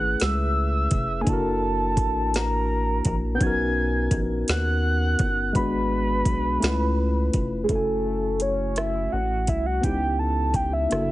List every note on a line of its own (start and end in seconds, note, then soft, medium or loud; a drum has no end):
0.00 0.16 G#1 medium
0.00 1.20 A3 medium
0.00 1.21 C#4 medium
0.00 1.23 E4 medium
0.00 1.24 G#4 medium
0.00 1.29 B4 medium
0.00 0.24 F#6 loud
0.20 0.88 C#2 medium
0.20 1.23 E6 loud
0.20 snare loud
0.20 closed hi-hat medium
0.91 1.23 F1 medium
0.91 kick medium
0.91 closed hi-hat medium
1.21 3.34 A#3 medium
1.21 3.36 D4 medium
1.21 1.30 G#5 medium
1.27 1.99 F#1 loud
1.27 3.37 E4 medium
1.27 3.39 F#4 medium
1.27 2.38 A5 medium
1.27 kick medium
1.27 closed hi-hat medium
1.33 3.40 A#4 medium
1.97 3.01 A1 medium
1.97 kick medium
1.97 closed hi-hat medium
2.34 3.15 A#5 medium
2.34 snare loud
2.34 closed hi-hat medium
3.05 3.38 A#1 loud
3.05 kick medium
3.05 closed hi-hat medium
3.35 5.48 B3 medium
3.35 5.50 C#4 medium
3.35 3.44 G6 medium
3.41 4.08 B1 loud
3.41 5.51 D#4 medium
3.41 5.52 F#4 medium
3.41 4.13 G#6 loud
3.41 kick medium
3.41 closed hi-hat medium
3.47 5.54 A#4 medium
4.11 4.44 A#1 loud
4.11 kick medium
4.11 closed hi-hat medium
4.48 5.16 D#2 loud
4.48 5.52 F#6 loud
4.48 snare loud
4.48 closed hi-hat medium
5.19 5.52 G1 medium
5.19 kick medium
5.19 closed hi-hat medium
5.53 6.23 G#1 loud
5.53 6.61 G#3 medium
5.53 6.62 B3 medium
5.53 6.63 D4 medium
5.53 7.30 B5 loud
5.53 kick loud
5.53 closed hi-hat medium
5.57 6.63 F#4 medium
5.57 6.64 B4 medium
6.25 6.58 B1 medium
6.25 kick medium
6.25 closed hi-hat medium
6.60 7.30 C#2 loud
6.60 7.68 A3 medium
6.60 7.66 C#4 medium
6.60 7.69 E4 medium
6.60 7.70 F4 medium
6.60 closed hi-hat medium
6.64 7.71 B4 medium
6.64 snare loud
7.33 7.66 F1 medium
7.33 kick medium
7.33 closed hi-hat medium
7.64 7.73 G#3 soft
7.64 9.78 C#4 medium
7.64 7.72 G#4 medium
7.69 9.08 F#1 loud
7.69 9.80 A3 medium
7.69 9.80 E4 medium
7.69 9.81 F#4 soft
7.69 8.43 A4 medium
7.69 kick medium
7.69 closed hi-hat medium
7.75 9.83 G#5 medium
8.40 8.79 C#5 medium
8.40 closed hi-hat medium
8.76 9.14 E5 loud
8.76 cross-stick loud
8.76 closed hi-hat medium
9.12 9.50 A1 loud
9.12 9.50 F#5 loud
9.47 9.80 C2 medium
9.47 9.68 E5 medium
9.47 kick medium
9.47 closed hi-hat medium
9.66 9.83 F#5 medium
9.81 10.87 C#2 medium
9.81 10.89 B3 medium
9.81 10.90 C#4 medium
9.81 10.91 D#4 medium
9.81 10.21 G5 loud
9.81 kick medium
9.81 closed hi-hat medium
9.85 10.90 E4 medium
9.85 10.92 G4 medium
10.19 10.57 A5 medium
10.54 10.73 G5 loud
10.54 kick medium
10.54 closed hi-hat medium
10.73 11.12 E5 loud
10.89 11.12 F#1 loud
10.89 11.12 A#3 medium
10.89 11.12 D4 soft
10.89 11.12 E4 medium
10.89 cross-stick medium
10.89 closed hi-hat medium
10.93 11.12 F#4 soft
10.93 11.12 A4 medium